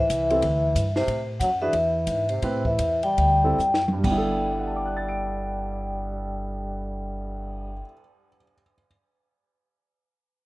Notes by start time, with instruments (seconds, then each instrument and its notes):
Already playing: trombone E3
0.00 vibraphone E5
0.10 upright bass C2, kick, hi-hat pedal, ride
0.30 upright piano C4 E4 G4 A4, ride
0.42 upright bass D2, kick, ride
0.75 upright bass G2, kick, hi-hat pedal, ride
0.96 trombone C3, vibraphone C5, snare
1.07 upright bass A2, kick, ride
1.40 upright bass F#2, trombone F#3, vibraphone F#5, kick, hi-hat pedal, ride
1.61 trombone E3, upright piano D4 F#4 G#4 B4, vibraphone E5
1.73 upright bass E2, kick, ride
2.07 upright bass G#2, kick, hi-hat pedal, ride
2.29 trombone C3, vibraphone C5, ride
2.42 upright bass A2, upright piano C4 E4 G4 B4, kick, ride
2.65 trombone E3, vibraphone E5, kick
2.79 upright bass E2, kick, hi-hat pedal, ride
3.03 trombone G3, vibraphone G5, ride
3.18 upright bass D2, kick, ride
3.44 upright piano C4 E4 G4 A4
3.58 upright bass F#2, hi-hat pedal
3.74 snare
3.88 mid tom
3.93 upright piano G2
3.99 upright piano G3
4.04 upright bass G1, trombone G3, upright piano B3, vibraphone G5, kick, crash
4.11 upright piano E4
4.18 upright piano A4
4.33 cymbal swell
4.51 upright piano D5
4.59 upright piano F#5
4.67 upright piano A5
4.76 upright piano D6
4.86 upright piano F#6
4.97 upright piano A6
5.08 upright piano D7